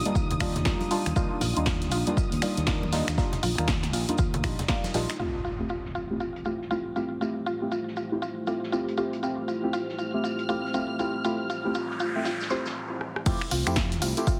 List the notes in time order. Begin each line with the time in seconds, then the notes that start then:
Already playing: A#3 D4 D#4 F4 G4 D#6
0.05 G3 A#3 D4 D#4 F4, closed hi-hat, high conga
0.15 D#2 F4, kick, shaker
0.31 closed hi-hat, low conga
0.40 G3 A#3 D4 D#4 F4, finger snap, kick, open hi-hat, shaker
0.56 snare, closed hi-hat, low conga
0.65 G3 A#3 D4 D#4 F4, kick, snare, shaker
0.81 closed hi-hat, high conga
0.91 G3 A#3 D4 D#4 F4, open hi-hat, shaker
1.06 D#2, finger snap, closed hi-hat
1.16 D#2 G3 A#3 D4 D#4 F4, kick, shaker
1.41 A#1 F4, open hi-hat, high conga, shaker
1.57 D#2 G3 A#3 D4 D#4 F4, closed hi-hat
1.66 F4, kick, snare, shaker
1.82 snare, closed hi-hat
1.91 A#1 F4, open hi-hat, shaker
2.07 G3 A#3 D4 D#4 F4, closed hi-hat, high conga
2.17 F4, kick, shaker
2.32 D#2, closed hi-hat
2.42 G3 A#3 D4 D#4 F4, finger snap, open hi-hat, shaker
2.57 D#2, snare, closed hi-hat
2.67 G3 A#3 D4 D#4 F4, kick, snare, shaker
2.83 high conga
2.92 G3 A#3 D4 D#4 F4, snare, open hi-hat, shaker
3.08 D#2, finger snap, snare, closed hi-hat, shaker
3.18 G3 A#3 D4 D#4 F4, kick, snare, shaker
3.33 snare, closed hi-hat, low conga
3.43 A#1 F4, open hi-hat, high conga, shaker
3.58 D#2 G3 A#3 D4 D#4 F4, finger snap, closed hi-hat
3.68 F4, kick, snare, shaker
3.83 snare, closed hi-hat
3.93 A#1 F4, open hi-hat, shaker
4.09 G3 A#3 D4 D#4 F4, closed hi-hat, high conga
4.18 D#2 F4, kick, shaker
4.34 closed hi-hat, low conga
4.44 A#1 G3 A#3 D4 D#4 F4, finger snap, kick, open hi-hat, shaker
4.59 snare, closed hi-hat, low conga
4.68 G3 A#3 D4 D#4 F4 F5, kick, snare, shaker
4.84 snare, closed hi-hat, high conga, shaker
4.94 A#1 G3 A#3 D4 D#4 F4 G4, snare, open hi-hat, shaker
5.09 D#4, finger snap, snare, closed hi-hat, shaker
5.19 A3 C4 E4 F4 G4 C5, impact, shaker
5.45 F4, shaker
5.60 A3 C4 E4 F4 G4
5.69 F4, shaker
5.85 snare
5.95 F4, shaker
6.10 A3 C4 E4 F4 G4
6.20 F4, shaker
6.36 closed hi-hat
6.45 A3 C4 E4 F4 G4, shaker
6.61 snare
6.71 A3 C4 E4 F4 G4, shaker
6.96 A3 C4 E4 F4 G4, shaker
7.21 A3 C4 E4 F4 G4, shaker
7.46 F4, shaker
7.62 A3 C4 E4 F4 G4
7.71 F4, shaker
7.87 snare
7.96 F4, shaker
8.12 A3 C4 E4 F4 G4
8.22 F4, shaker
8.47 A3 C4 E4 F4 G4, shaker
8.63 snare
8.72 A3 C4 E4 F4 G4, shaker
8.88 closed hi-hat
8.97 A3 C4 E4 F4 G4, shaker
9.13 closed hi-hat
9.23 A3 C4 E4 F4 G4 F6, shaker
9.48 F4, shaker
9.63 A3 C4 E4 F4 G4
9.73 F4, shaker
9.88 snare
9.98 F4, shaker
10.14 A3 C4 E4 F4 G4
10.24 F4, shaker
10.39 closed hi-hat
10.49 A3 C4 E4 F4 G4, shaker
10.65 snare
10.74 A3 C4 E4 F4 G4, shaker
10.99 A3 C4 E4 F4 G4, shaker
11.24 A3 C4 E4 F4 G4, noise sweep, shaker
11.50 F4, shaker
11.65 A3 C4 E4 F4 G4
11.74 F4, shaker
11.90 snare
12.00 F4, shaker
12.15 A3 C4 E4 F4 G4
12.25 F4, snare, shaker
12.40 snare, shaker
12.50 A3 C4 E4 F4 G4 C5, snare, shaker
12.65 snare, shaker
13.01 cross-stick
13.16 cross-stick
13.26 F2 A3 C4 E4 F4 G4 C5, kick, tambourine, crash, shaker
13.41 finger snap
13.51 C2 F4, open hi-hat, tambourine, shaker
13.67 F2 A3 C4 E4 F4 G4, finger snap, closed hi-hat, tambourine
13.76 E4, kick, snare, tambourine, shaker
13.92 snare, closed hi-hat
14.02 C2 F4, open hi-hat, tambourine, shaker
14.17 A3 C4 E4 F4 G4, closed hi-hat, tambourine
14.27 F4, kick, tambourine, shaker